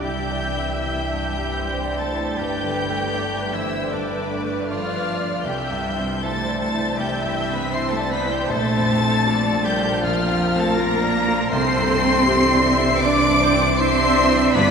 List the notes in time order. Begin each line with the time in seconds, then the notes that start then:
Already playing: C2 G2 E3 G3 D4
0.02 G3 E4 G4 E5 G5 G6
0.31 D5
0.58 E4
0.81 C2 G3 G4 G5 G6
1.12 G2
1.36 G3
1.59 E4 C5
1.85 D5
1.97 A3 A4 A5 A6
2.12 E4
2.36 G1 G2 G3 A3 G4 B4 G5 G6
2.64 D3
2.90 A3
3.14 D4 D5
3.40 B4
3.51 E3 E4 C5 E5 E6
3.67 D4
3.90 G2 D3 D4 B4 D5 D6
4.19 D3
4.44 A3
4.67 F3 D4 F4 D5 F5 F6
4.96 B4
5.20 D4
5.44 C2 E3 G3 D4 G4 E5 G5 G6
5.48 G5
5.71 G2
5.97 C4
6.21 A3 E4 A4 C5 A5 A6
6.48 D5
6.57 A3 A4 A5 A6
6.74 E4
6.98 C2 G3 G4 E5 G5 G6
7.22 G2
7.49 C4
7.54 B3 B4 B5 B6
7.72 C4 E4 C5 C6 C7
7.90 A3 A4 A5 A6
7.99 D5
8.11 B3 B4 B5 B6
8.25 E4
8.30 G3 G4 G5 G6
8.49 A#1 F3 A3 A4 A5 A6
8.77 F2
9.03 C4
9.27 F4 D5
9.52 D5
9.64 G3 G4 A#4 G5 G6
9.78 F4
10.00 A#1 F3 F4 F5 F6
10.28 F2
10.54 A3 C4 A5
10.59 A4 A5 A6
10.77 A#3 F4 A#4 A#5 A#6
11.02 D5
11.28 F4
11.51 C2 C3 E3 C4 D4 A4 C5 C6 C7
11.77 G2
12.03 C4
12.26 E4 G4
12.52 D5
12.64 E5
12.78 E4
13.01 C2 D4 D5 D6 D7
13.29 G2
13.41 C5
13.53 C4
13.78 C4 E4 C5 E5 C6 C7
14.04 D5
14.30 E4
14.53 G1 G2 A3 B3 B4 D5 B5 B6
14.57 B5